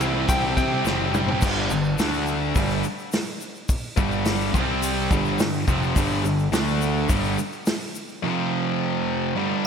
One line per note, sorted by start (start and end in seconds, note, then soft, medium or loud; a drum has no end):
0.00 0.25 C2 medium
0.00 0.28 C3 loud
0.00 0.84 C3 medium
0.00 0.26 E3 medium
0.00 0.15 G3 medium
0.00 0.83 C4 medium
0.00 0.14 E4 medium
0.00 0.13 G4 medium
0.00 ride medium
0.00 shaker medium
0.15 0.27 G3 medium
0.15 0.28 E4 medium
0.15 0.28 G4 medium
0.28 0.53 C2 loud
0.28 0.71 E3 medium
0.28 0.44 G3 medium
0.28 0.42 E4 medium
0.28 0.42 G4 medium
0.28 0.56 G5 loud
0.28 kick loud
0.28 ride loud
0.28 shaker loud
0.43 0.73 G3 medium
0.43 0.72 E4 medium
0.43 0.70 G4 medium
0.57 0.81 C3 medium
0.57 0.84 G5 loud
0.57 kick medium
0.57 ride medium
0.57 shaker medium
0.72 0.85 G3 medium
0.72 0.87 E4 medium
0.72 0.87 G4 medium
0.85 1.34 F#1 medium
0.85 1.41 C3 loud
0.85 1.14 E3 loud
0.85 1.14 G3 medium
0.85 1.41 C4 medium
0.85 1.15 E4 loud
0.85 1.15 G4 loud
0.85 snare medium
0.85 shaker loud
1.14 1.41 E3 medium
1.14 1.30 G3 medium
1.14 1.29 E4 medium
1.14 1.28 G4 medium
1.14 mid tom medium
1.14 shaker medium
1.28 1.42 G3 medium
1.28 1.42 E4 medium
1.28 1.41 G4 medium
1.28 floor tom loud
1.41 1.69 G1 medium
1.41 1.70 G2 medium
1.41 1.70 D3 medium
1.41 1.71 G3 loud
1.41 kick loud
1.41 crash loud
1.41 shaker loud
1.70 1.97 G1 medium
1.70 1.94 G2 medium
1.70 1.94 D3 medium
1.70 shaker medium
1.84 shaker soft
1.99 2.52 D2 medium
1.99 2.55 D3 medium
1.99 2.55 A3 medium
1.99 2.55 D4 medium
1.99 snare loud
1.99 open hi-hat medium
1.99 shaker loud
2.13 shaker soft
2.27 shaker medium
2.55 2.82 G1 loud
2.55 2.83 G2 medium
2.55 2.83 D3 medium
2.55 2.84 G3 medium
2.55 kick loud
2.55 open hi-hat medium
2.55 shaker loud
2.70 shaker soft
2.84 shaker medium
2.99 shaker soft
3.12 snare loud
3.12 open hi-hat medium
3.12 shaker loud
3.27 shaker soft
3.41 shaker medium
3.55 shaker soft
3.69 kick loud
3.69 open hi-hat medium
3.69 shaker medium
3.97 4.50 G1 medium
3.97 4.53 G2 medium
3.97 4.54 D3 loud
3.97 4.54 G3 loud
3.97 kick loud
3.97 shaker medium
4.12 shaker soft
4.25 snare loud
4.25 open hi-hat medium
4.25 shaker loud
4.40 shaker soft
4.54 5.07 C2 medium
4.54 5.10 C3 medium
4.54 5.10 G3 loud
4.54 5.10 C4 loud
4.54 kick loud
4.54 shaker medium
4.82 open hi-hat medium
4.82 shaker loud
4.97 shaker soft
5.11 5.37 G1 loud
5.11 5.39 G2 medium
5.11 5.39 D3 medium
5.11 5.39 G3 loud
5.11 kick loud
5.11 shaker medium
5.25 shaker soft
5.39 5.65 G1 medium
5.39 5.62 G2 medium
5.39 5.63 D3 medium
5.39 snare loud
5.39 open hi-hat medium
5.39 shaker loud
5.54 shaker soft
5.68 5.94 F1 loud
5.68 5.95 F2 medium
5.68 5.95 C3 loud
5.68 5.96 F3 loud
5.68 kick loud
5.68 shaker medium
5.83 shaker soft
5.96 6.22 G1 medium
5.96 6.24 G2 medium
5.96 6.24 D3 loud
5.96 6.24 G3 loud
5.96 kick loud
5.96 open hi-hat medium
5.96 shaker loud
6.24 6.50 G1 medium
6.24 6.47 G2 medium
6.24 6.47 D3 medium
6.24 shaker medium
6.39 shaker soft
6.52 7.05 D2 loud
6.52 7.09 D3 medium
6.52 7.09 A3 medium
6.52 7.09 D4 loud
6.52 snare loud
6.52 open hi-hat medium
6.52 shaker loud
6.68 shaker soft
6.82 shaker medium
7.09 7.36 G1 loud
7.09 7.37 G2 medium
7.09 7.37 D3 loud
7.09 7.37 G3 loud
7.09 kick loud
7.09 open hi-hat medium
7.09 shaker loud
7.24 shaker soft
7.38 shaker medium
7.53 shaker soft
7.66 snare loud
7.66 open hi-hat medium
7.66 shaker loud
7.81 shaker soft
7.95 shaker medium
8.08 shaker soft
8.24 9.35 F2 loud
8.24 9.36 C3 loud
8.24 9.36 F3 loud
9.35 9.67 G2 medium
9.35 9.67 D3 medium
9.35 9.67 G3 loud